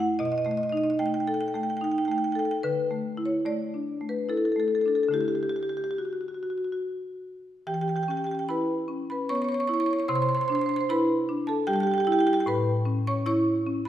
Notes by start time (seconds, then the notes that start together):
Already playing: F#2 A3 E4
0.00 F#5
0.19 B2 D#5
0.25 D#5
0.32 D#5
0.38 D#5
0.45 A3 D#5
0.51 D#5
0.57 D#5
0.63 D#5
0.69 D#4 D#5
0.77 D#5
0.83 D#5
0.90 D#5
0.99 A3 G5
1.06 G5
1.14 G5
1.20 G5
1.27 A4 G5
1.34 G5
1.41 G5
1.48 G5
1.54 A3 G5
1.63 G5
1.70 G5
1.77 G5
1.81 D#4 G5
1.92 G5
1.98 G5
2.05 A3 G5
2.12 G5
2.18 G5
2.24 G5
2.32 A4 G5
2.39 G5
2.45 G5
2.51 G5
2.63 D3 B4
2.91 A3
3.17 E4
3.26 C#5
3.46 A3 D5
3.74 D4
4.01 A3
4.09 B4
4.29 E4 A4
4.37 A4
4.45 A4
4.52 A4
4.56 A3 A4
4.68 A4
4.75 A4
4.81 A4
4.86 D4 A4
4.95 A4
5.03 A4
5.08 D3 A3 E4
5.14 G4
5.21 G4
5.28 G4
5.35 G4
5.43 G4
5.49 G4
5.56 G4
5.63 G4
5.69 G4
5.77 G4
5.84 G4
5.91 G4
5.98 F#4
6.05 F#4
6.13 F#4
6.21 F#4
6.28 F#4
6.35 F#4
6.43 F#4
6.50 F#4
6.58 F#4
6.65 F#4
6.72 F#4
7.67 E3 G4 G5
7.74 G4 G5
7.81 G4 G5
7.88 G4 G5
7.96 G4 G5
8.03 G4 G5
8.08 C#4 G4 G5
8.17 G4 G5
8.24 G4 G5
8.31 G4 G5
8.39 G5
8.49 E4 B4 B5
8.88 C#4
9.10 B4 B5
9.29 B3 C#5 C#6
9.35 C#5 C#6
9.42 C#5 C#6
9.49 C#5 C#6
9.54 C#6
9.60 C#5 C#6
9.67 E4 C#5 C#6
9.74 C#5 C#6
9.80 C#5 C#6
9.86 C#6
9.91 C#5 C#6
9.99 C#5 C#6
10.08 C3 C5 C6
10.15 C5 C6
10.22 C5 C6
10.29 C5 C6
10.35 C5 C6
10.41 C5 C6
10.48 D4 C6
10.52 C5 C6
10.59 C5 C6
10.66 C5 C6
10.74 C5 C6
10.81 C5
10.89 E4 B4 B5
11.29 D4
11.47 A4 A5
11.67 G3 G4 G5
11.73 G4 G5
11.80 G4 G5
11.87 G5
11.91 G4 G5
11.98 G4 G5
12.05 E4 G4 G5
12.12 G4 G5
12.19 G4 G5
12.27 G4 G5
12.33 G4 G5
12.40 G5
12.46 A2 B4 B5
12.85 C#4
13.07 C#5 C#6
13.26 E4 C#5 C#6
13.67 C#4
13.85 B5